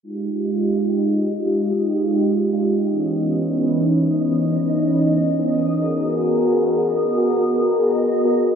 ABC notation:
X:1
M:4/4
L:1/16
Q:1/4=168
K:Fm
V:1 name="Synth texture"
[ee']16- | [ee']16- | [ee']16- | [ee']16- |
[ee']16- | [ee']16 |]
V:2 name="Analog synth pad"
[A,EFG]3 [A,EFG]12- [A,EFG] | [A,EFG]3 [A,EFG]8- [A,EFG] [A,EFG] z3 | [_F,_CDE]3 [F,CDE]12- [F,CDE] | [_F,_CDE]3 [F,CDE]8- [F,CDE] [F,CDE] z3 |
[_C_GAB]3 [CGAB]12- [CGAB] | [_C_GAB]3 [CGAB]8- [CGAB] [CGAB] z3 |]